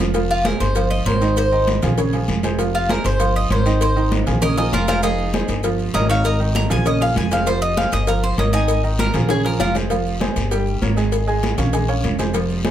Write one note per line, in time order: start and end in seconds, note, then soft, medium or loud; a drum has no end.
0.00 0.55 F1 medium
0.00 0.11 F3 medium
0.00 0.11 F4 medium
0.00 0.12 F5 medium
0.14 0.39 F3 medium
0.14 0.39 F4 medium
0.14 0.40 F5 medium
0.14 cowbell loud
0.14 high conga soft
0.14 long guiro medium
0.14 maracas medium
0.30 0.45 F4 medium
0.30 high conga soft
0.30 maracas soft
0.44 0.70 G#3 medium
0.44 0.70 G#4 medium
0.44 0.60 A#4 medium
0.44 0.70 C5 medium
0.44 cowbell medium
0.44 high conga loud
0.44 short guiro medium
0.44 maracas soft
0.60 1.03 G1 medium
0.60 0.90 C5 medium
0.60 cowbell medium
0.60 short guiro medium
0.60 maracas medium
0.75 1.01 F3 medium
0.75 1.01 F4 medium
0.75 1.01 F5 medium
0.75 cowbell loud
0.75 high conga soft
0.75 long guiro medium
0.75 maracas medium
0.90 1.06 D#5 medium
0.90 high conga soft
0.90 maracas soft
1.06 1.77 G#1 medium
1.06 1.19 A#3 medium
1.06 1.19 A#4 medium
1.06 1.36 C5 medium
1.06 1.19 C#5 medium
1.06 cowbell medium
1.06 high conga medium
1.06 short guiro medium
1.06 maracas soft
1.21 1.46 D#3 medium
1.21 1.46 D#4 medium
1.21 1.47 D#5 medium
1.21 short guiro medium
1.21 maracas medium
1.37 1.67 C5 loud
1.37 cowbell loud
1.37 long guiro medium
1.37 maracas medium
1.52 1.77 D#3 medium
1.52 1.77 D#4 medium
1.52 1.77 D#5 medium
1.52 high conga soft
1.52 maracas soft
1.67 cowbell medium
1.67 high conga medium
1.67 short guiro medium
1.67 maracas soft
1.82 2.25 A#1 medium
1.82 1.95 F3 medium
1.82 1.95 F4 medium
1.82 1.95 G#4 medium
1.82 cowbell medium
1.82 high conga soft
1.82 low conga medium
1.82 short guiro medium
1.82 maracas medium
1.97 2.11 C#3 medium
1.97 2.11 C#4 medium
1.97 2.11 C#5 medium
1.97 cowbell loud
1.97 high conga soft
1.97 long guiro medium
1.97 maracas medium
2.13 2.38 F3 medium
2.13 2.38 F4 medium
2.13 2.39 G#4 medium
2.13 cowbell medium
2.13 high conga soft
2.13 maracas soft
2.28 2.99 F1 medium
2.28 cowbell medium
2.28 high conga medium
2.28 short guiro medium
2.28 maracas soft
2.43 2.56 G#3 medium
2.43 2.56 G#4 medium
2.43 2.56 C5 medium
2.43 cowbell medium
2.43 high conga medium
2.43 short guiro medium
2.43 maracas medium
2.58 2.84 F3 medium
2.58 2.84 F4 medium
2.58 2.84 F5 medium
2.58 cowbell loud
2.58 high conga soft
2.58 long guiro medium
2.58 maracas medium
2.74 2.89 F4 medium
2.74 high conga soft
2.74 maracas soft
2.89 3.14 G#3 medium
2.89 3.15 G#4 medium
2.89 3.05 A#4 medium
2.89 3.15 C5 medium
2.89 cowbell medium
2.89 high conga loud
2.89 short guiro medium
2.89 maracas soft
3.04 3.48 G1 loud
3.04 3.35 C5 medium
3.04 cowbell medium
3.04 short guiro medium
3.04 maracas medium
3.20 3.45 F3 medium
3.20 3.45 F4 medium
3.20 3.45 F5 medium
3.20 cowbell loud
3.20 high conga soft
3.20 long guiro medium
3.20 maracas medium
3.35 3.51 D#5 medium
3.35 high conga soft
3.35 maracas soft
3.50 4.21 G#1 medium
3.50 3.63 A#3 medium
3.50 3.63 A#4 medium
3.50 3.81 C5 medium
3.50 3.63 C#5 medium
3.50 cowbell medium
3.50 high conga medium
3.50 short guiro medium
3.50 maracas soft
3.66 3.91 D#3 medium
3.66 3.91 D#4 medium
3.66 3.91 D#5 medium
3.66 short guiro medium
3.66 maracas medium
3.81 4.11 C5 medium
3.81 cowbell loud
3.81 high conga soft
3.81 long guiro medium
3.81 maracas medium
3.96 4.21 D#3 medium
3.96 4.21 D#4 medium
3.96 4.22 D#5 medium
3.96 high conga soft
3.96 maracas soft
4.12 cowbell medium
4.12 high conga loud
4.12 short guiro medium
4.12 maracas soft
4.26 4.69 A#1 medium
4.26 4.39 F3 medium
4.26 4.39 F4 medium
4.26 4.40 G#4 medium
4.26 cowbell medium
4.26 high conga soft
4.26 low conga medium
4.26 short guiro medium
4.26 maracas medium
4.42 4.55 C#3 medium
4.42 4.55 C#4 medium
4.42 4.56 A#4 medium
4.42 4.55 C#5 medium
4.42 4.57 D#5 medium
4.42 cowbell loud
4.42 high conga soft
4.42 low conga medium
4.42 long guiro medium
4.42 maracas medium
4.57 4.82 F3 medium
4.57 4.82 F4 medium
4.57 4.83 G#4 medium
4.57 4.72 A#4 medium
4.57 4.73 D#5 medium
4.57 cowbell medium
4.57 high bongo medium
4.57 high conga soft
4.57 maracas soft
4.73 5.43 F1 medium
4.73 4.87 F4 medium
4.73 4.88 A#4 medium
4.73 cowbell medium
4.73 low bongo medium
4.73 high conga medium
4.73 short guiro medium
4.73 maracas soft
4.88 5.00 G#3 medium
4.88 5.02 F4 medium
4.88 5.00 G#4 medium
4.88 5.03 A#4 medium
4.88 5.01 C5 medium
4.88 cowbell medium
4.88 low bongo medium
4.88 high conga medium
4.88 short guiro medium
4.88 maracas medium
5.03 5.28 F3 medium
5.03 5.60 D#4 medium
5.03 5.29 F4 medium
5.03 5.63 G#4 loud
5.03 5.29 F5 medium
5.03 cowbell loud
5.03 high conga soft
5.03 long guiro medium
5.03 maracas medium
5.18 high conga soft
5.18 maracas soft
5.33 5.59 G#3 medium
5.33 5.59 G#4 medium
5.33 5.59 C5 medium
5.33 cowbell medium
5.33 high conga loud
5.33 short guiro medium
5.33 maracas soft
5.48 5.91 G1 medium
5.48 cowbell medium
5.48 short guiro medium
5.48 maracas medium
5.63 5.89 F3 medium
5.63 5.89 F4 medium
5.63 5.90 F5 medium
5.63 cowbell loud
5.63 high conga soft
5.63 long guiro medium
5.63 maracas medium
5.79 high conga soft
5.79 maracas soft
5.94 6.65 G#1 medium
5.94 6.07 A#3 medium
5.94 6.08 A#4 medium
5.94 6.07 A#4 medium
5.94 6.07 C#5 medium
5.94 6.09 D#5 loud
5.94 cowbell medium
5.94 high conga medium
5.94 short guiro medium
5.94 maracas soft
6.09 6.35 D#3 medium
6.09 6.35 D#4 medium
6.09 6.24 C#5 medium
6.09 6.35 D#5 medium
6.09 6.25 F5 loud
6.09 short guiro medium
6.09 maracas medium
6.24 6.39 A#4 medium
6.24 6.40 D#5 medium
6.24 cowbell loud
6.24 high conga soft
6.24 long guiro medium
6.24 maracas medium
6.40 6.65 D#3 medium
6.40 6.65 D#4 medium
6.40 6.65 D#5 medium
6.40 high conga soft
6.40 maracas soft
6.55 6.70 A#5 loud
6.55 cowbell medium
6.55 high conga loud
6.55 short guiro medium
6.70 7.13 A#1 loud
6.70 6.83 F3 medium
6.70 6.83 F4 medium
6.70 6.83 G#4 medium
6.70 6.86 G#5 loud
6.70 cowbell medium
6.70 high conga soft
6.70 low conga medium
6.70 short guiro medium
6.70 maracas medium
6.85 6.98 C#3 medium
6.85 6.98 C#4 medium
6.85 6.98 C#5 medium
6.85 7.01 D#5 medium
6.85 cowbell loud
6.85 high conga soft
6.85 long guiro medium
6.85 maracas medium
7.01 7.26 F3 medium
7.01 7.26 F4 medium
7.01 7.26 G#4 medium
7.01 7.16 F5 loud
7.01 cowbell medium
7.01 high conga soft
7.01 maracas soft
7.16 7.87 F1 medium
7.16 7.32 G#5 medium
7.16 cowbell medium
7.16 high conga medium
7.16 short guiro medium
7.16 maracas soft
7.31 7.44 G#3 medium
7.31 7.44 G#4 medium
7.31 7.44 C5 medium
7.31 7.47 F5 medium
7.31 cowbell medium
7.31 high conga medium
7.31 short guiro medium
7.31 maracas medium
7.46 7.72 F3 medium
7.46 7.72 F4 medium
7.46 7.61 C5 medium
7.46 7.72 F5 medium
7.46 cowbell loud
7.46 high conga soft
7.46 long guiro medium
7.46 maracas medium
7.62 7.77 D#5 loud
7.62 high conga soft
7.62 maracas soft
7.77 8.02 G#3 medium
7.77 8.02 G#4 medium
7.77 8.02 C5 medium
7.77 7.92 F5 loud
7.77 cowbell medium
7.77 high conga loud
7.77 short guiro medium
7.77 maracas soft
7.92 8.35 G1 medium
7.92 8.08 D#5 loud
7.92 cowbell medium
7.92 short guiro medium
7.92 maracas medium
8.07 8.32 F3 medium
8.07 8.33 F4 medium
8.07 8.23 A#4 medium
8.07 8.33 F5 medium
8.07 cowbell loud
8.07 high conga soft
8.07 long guiro medium
8.07 maracas medium
8.23 8.38 C5 medium
8.23 high conga soft
8.23 maracas soft
8.38 9.09 G#1 medium
8.38 8.51 A#3 medium
8.38 8.51 A#4 medium
8.38 8.51 C#5 medium
8.38 8.52 D#5 loud
8.38 cowbell medium
8.38 high conga medium
8.38 short guiro medium
8.38 maracas soft
8.53 8.78 D#3 medium
8.53 8.78 D#4 medium
8.53 8.82 D#5 medium
8.53 8.79 D#5 medium
8.53 8.83 G#5 medium
8.53 short guiro medium
8.53 maracas medium
8.68 cowbell loud
8.68 high conga soft
8.68 long guiro medium
8.68 maracas medium
8.84 9.09 D#3 medium
8.84 9.09 D#4 medium
8.84 9.09 D#5 medium
8.84 high conga soft
8.84 maracas soft
8.99 9.29 A#4 loud
8.99 cowbell medium
8.99 high conga loud
8.99 short guiro medium
8.99 maracas soft
9.14 9.57 A#1 loud
9.14 9.27 F3 medium
9.14 9.27 F4 medium
9.14 9.27 G#4 medium
9.14 cowbell medium
9.14 high conga soft
9.14 low conga medium
9.14 short guiro medium
9.14 maracas medium
9.29 9.42 C#3 medium
9.29 9.42 C#4 medium
9.29 9.45 G#4 medium
9.29 9.42 C#5 medium
9.29 cowbell loud
9.29 high bongo loud
9.29 high conga soft
9.29 long guiro medium
9.29 maracas medium
9.44 9.70 F3 medium
9.44 9.70 F4 medium
9.44 9.70 G#4 medium
9.44 9.59 A#4 medium
9.44 cowbell medium
9.44 high conga soft
9.44 maracas soft
9.60 10.31 F1 medium
9.60 9.74 F4 medium
9.60 9.75 A#4 medium
9.60 cowbell medium
9.60 low bongo loud
9.60 high conga medium
9.60 short guiro medium
9.60 maracas soft
9.75 9.88 G#3 medium
9.75 9.88 G#4 medium
9.75 9.88 C5 medium
9.75 cowbell medium
9.75 low bongo medium
9.75 high conga medium
9.75 short guiro medium
9.75 maracas medium
9.90 10.15 F3 medium
9.90 10.15 F4 medium
9.90 10.15 F5 medium
9.90 cowbell loud
9.90 high conga soft
9.90 long guiro medium
9.90 maracas medium
10.06 high conga soft
10.06 maracas soft
10.20 10.46 G#3 medium
10.20 10.46 G#4 medium
10.20 10.46 C5 medium
10.20 cowbell medium
10.20 high conga loud
10.20 short guiro medium
10.20 maracas soft
10.36 10.79 G1 medium
10.36 cowbell medium
10.36 short guiro medium
10.36 maracas medium
10.51 10.76 G3 medium
10.51 10.76 G4 medium
10.51 10.76 G5 medium
10.51 cowbell loud
10.51 high conga soft
10.51 long guiro medium
10.51 maracas medium
10.67 high conga soft
10.67 maracas soft
10.82 11.52 G#1 medium
10.82 10.94 A#3 medium
10.82 10.94 A#4 medium
10.82 10.95 C#5 medium
10.82 cowbell medium
10.82 high conga medium
10.82 short guiro medium
10.82 maracas soft
10.97 11.22 G#3 medium
10.97 11.22 G#4 medium
10.97 11.22 G#5 medium
10.97 short guiro medium
10.97 maracas medium
11.12 cowbell loud
11.12 high conga soft
11.12 long guiro medium
11.12 maracas medium
11.27 11.52 G#3 medium
11.27 11.53 G#4 loud
11.27 11.53 G#5 loud
11.27 high conga soft
11.27 maracas soft
11.43 cowbell medium
11.43 high conga loud
11.43 short guiro medium
11.43 maracas soft
11.58 12.01 A#1 loud
11.58 11.71 C#4 medium
11.58 11.71 C#5 medium
11.58 11.71 F5 medium
11.58 cowbell medium
11.58 high conga soft
11.58 low conga medium
11.58 short guiro medium
11.58 maracas medium
11.73 11.86 G#3 medium
11.73 11.86 G#4 medium
11.73 11.86 G#5 medium
11.73 cowbell loud
11.73 high conga soft
11.73 long guiro medium
11.73 maracas medium
11.88 12.13 C#4 medium
11.88 12.14 C#5 medium
11.88 12.14 F5 medium
11.88 cowbell medium
11.88 high conga soft
11.88 maracas soft
12.04 12.71 F1 medium
12.04 cowbell medium
12.04 high conga medium
12.04 short guiro medium
12.04 maracas soft
12.19 12.31 G#3 medium
12.19 12.31 G#4 medium
12.19 12.32 C5 medium
12.19 cowbell medium
12.19 high conga medium
12.19 short guiro medium
12.19 maracas medium
12.34 12.59 F3 medium
12.34 12.59 F4 medium
12.34 12.59 F5 medium
12.34 cowbell loud
12.34 high conga soft
12.34 long guiro medium
12.34 maracas medium
12.49 high conga soft
12.49 maracas soft
12.65 12.71 G#3 medium
12.65 12.71 G#4 medium
12.65 12.71 C5 medium
12.65 cowbell medium
12.65 high conga loud
12.65 short guiro medium
12.65 maracas soft